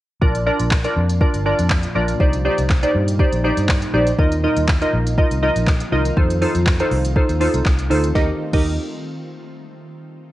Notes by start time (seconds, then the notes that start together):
0.21 A#1 A#2 F3 A#3 D4 F4 A#4 D5, kick
0.35 closed hi-hat
0.46 D4 F4 A#4 D5
0.60 A#1, closed hi-hat
0.71 kick, snare, clap
0.84 D4 F4 A#4 D5, closed hi-hat
0.96 F2
1.09 closed hi-hat
1.21 D4 F4 A#4 D5, kick
1.34 G1, closed hi-hat
1.46 D4 F4 A#4 D5
1.59 F2, closed hi-hat
1.70 kick, snare, clap
1.83 closed hi-hat
1.95 A#1 D4 F4 A#4 D5
2.08 closed hi-hat
2.20 C2 G3 C4 D#4 G4 C5 D5, kick
2.33 closed hi-hat
2.45 D#4 G4 C5 D5
2.58 C2, closed hi-hat
2.70 kick, snare, clap
2.83 D#4 G4 C5 D5, closed hi-hat
2.95 G2
3.08 closed hi-hat
3.19 D#4 G4 C5 D5, kick
3.32 A#1, closed hi-hat
3.44 D#4 G4 C5 D5
3.57 G2, closed hi-hat
3.69 kick, snare, clap
3.82 closed hi-hat
3.94 A#1 D#4 G4 C5 D5
4.07 closed hi-hat
4.18 D#2 D#3 F3 A#3 D#4 F4 A#4 D#5, kick
4.32 closed hi-hat
4.44 D#4 F4 A#4 D#5
4.56 D#2, closed hi-hat
4.68 kick, snare, clap
4.82 D#4 F4 A#4 D#5, closed hi-hat
4.93 A#1
5.07 closed hi-hat
5.18 D#4 F4 A#4 D#5, kick
5.31 C2, closed hi-hat
5.42 D#4 F4 A#4 D#5
5.56 A#1, closed hi-hat
5.67 kick, snare, clap
5.80 closed hi-hat
5.92 C2 D#4 F4 A#4 D#5
6.05 closed hi-hat
6.17 F2 A3 C4 D#4 F4 A4 C5, kick
6.30 closed hi-hat
6.41 D#4 F4 A4 C5, open hi-hat
6.55 F2, closed hi-hat
6.67 kick, snare, clap
6.80 D#4 F4 A4 C5, closed hi-hat
6.91 C2, open hi-hat
7.05 closed hi-hat
7.16 D#4 F4 A4 C5, kick
7.29 D#2, closed hi-hat
7.40 D#4 F4 A4 C5, open hi-hat
7.54 C2, closed hi-hat
7.66 C2, kick, snare, clap
7.79 closed hi-hat
7.90 D2 D#4 F4 A4 C5, open hi-hat
8.04 closed hi-hat
8.15 D#2 D#4 G4 A#4 D#5, kick, snare
8.53 D#2 D#4 G4 A#4 D#5, kick, crash